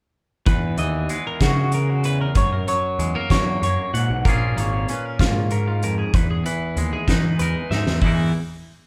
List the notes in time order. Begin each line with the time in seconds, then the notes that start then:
0.46 E2 B4, kick, closed hi-hat
0.77 D#2 E3 D#5, closed hi-hat
1.09 G#3 B4, closed hi-hat
1.27 A#4
1.40 C#3 F#4, kick, snare, closed hi-hat
1.72 A#4, closed hi-hat
1.90 F#4
2.04 E2 B4, closed hi-hat
2.21 A#4
2.35 F#2 C#5, kick, closed hi-hat
2.53 A#4
2.68 F#3 C#5, closed hi-hat
2.99 E2 G#3, closed hi-hat
3.15 A#3 A#4
3.30 E2 F#3 C#5, kick, snare, closed hi-hat
3.62 F#2 C#5, closed hi-hat
3.94 G#2 A#2 F#5, closed hi-hat
4.09 B1
4.25 A#1 A#2 A#3 C#4 F4 G#4 A#4, kick, closed hi-hat
4.57 G#1 A#3 C#5, closed hi-hat
4.88 C#4 B4, closed hi-hat
5.06 A#4
5.19 G#2 A#2 F4, kick, snare, closed hi-hat
5.50 G#2 A#4, closed hi-hat
5.68 F4
5.82 F2 A#4, closed hi-hat
5.99 G#4
6.14 E2 B4, kick, closed hi-hat
6.30 G#4
6.45 E3 B4, closed hi-hat
6.77 D#2 G#3, closed hi-hat
6.93 G#4
7.08 E3 D#4 B4, kick, snare, closed hi-hat
7.39 E2 A#4 B4, closed hi-hat
7.71 G#2 D#4 E5, snare
7.87 E2, snare
8.01 E2 E3 G#3 E4, kick, open hi-hat
8.06 D#4 A#4